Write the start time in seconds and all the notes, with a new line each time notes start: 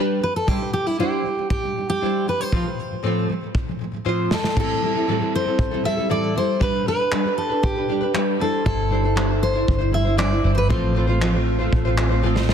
Already playing: G3 D4
0.00 G4 B4
0.22 G3 B4
0.36 A4
0.47 G3 D4 E4 G4 C5, kick
0.60 G3 D4
0.73 G4
0.86 G3 D4 E4
0.99 G3 D4 E4 G4 C5
1.24 G3 D4
1.36 G3 D4
1.50 G4, kick
1.63 G3 D4
1.76 G3 D4
1.89 G3 D4 G4
2.01 G3 D4 E4 C5
2.27 G3 D4 B4
2.40 G3 D4 C5
2.52 A2 F3 A3 C4 F4 C5, kick
2.66 A2 F3 A3
2.91 A2 F3 A3
3.03 A2 F3 A3 C4 F4 C5
3.28 A2 F3 A3
3.41 A2 F3 A3
3.55 kick
3.67 A2 F3 A3
3.79 A2 F3 A3
3.92 A2 F3 A3
4.05 A2 F3 A3 C4 F4 C5
4.30 A2 F3 A3 A4, snare
4.43 A2 F3 A3, snare
4.55 A2 E3 G3 C4 E4 A4, kick, crash
4.60 A4
4.82 G3 C4 E4 A4
4.95 G3 C4 E4 A4
5.07 A2 E3 G3 C4 E4 A4
5.19 G3 C4 E4 A4
5.35 C5
5.46 G3 C4 E4 A4
5.59 kick
5.71 G3 C4 E4 A4
5.84 G3 C4 E4 A4 E5
5.97 G3 C4 E4 A4
6.09 A2 E3 G3 C4 E4 A4 D5
6.34 G3 C4 E4 A4 C5
6.60 G3 D4 G4 B4, kick
6.86 G3 D4 G4 B4
6.99 D4 G4 B4
7.11 G3 D4 G4 B4, clap
7.25 D4 G4 B4
7.38 A4
7.49 D4 G4 B4
7.63 G4, kick
7.75 D4 G4 B4
7.88 G3 D4 G4 B4
8.01 D4 G4 B4
8.14 G3 D4 G4 B4, clap
8.40 G3 D4 E4 A4 C5
8.65 G1 G3 D4 E4 A4 C5, kick
8.90 G3 D4 E4 C5
9.03 D4 E4 C5
9.16 G3 D4 E4 C5, clap
9.28 D4 E4 C5
9.43 C5
9.53 D4 E4 C5
9.68 G1, kick
9.78 D4 E4 C5
9.91 G3 D4 E4 C5 E5
10.05 D4 E4 C5
10.17 G3 D4 E4 C5 D5, clap
10.30 D4 E4 C5
10.42 G1 G3 D4 E4 C5
10.55 B4 C5
10.68 A1 A2 F3 A3 C4 F4 C5, kick
10.95 A3 C4 F4 C5
11.07 A3 C4 F4 C5
11.20 A2 F3 A3 C4 F4 C5, clap
11.34 A3 C4 F4 C5
11.59 A3 C4 F4 C5
11.72 A1, kick
11.85 A3 C4 F4 C5
11.97 A3 C4 F4 C5, clap
12.09 A3 C4 F4 C5
12.23 A2 F3 A3 C4 F4 C5
12.35 A3 C4 F4 C5, snare
12.48 A3 C4 F4 C5, snare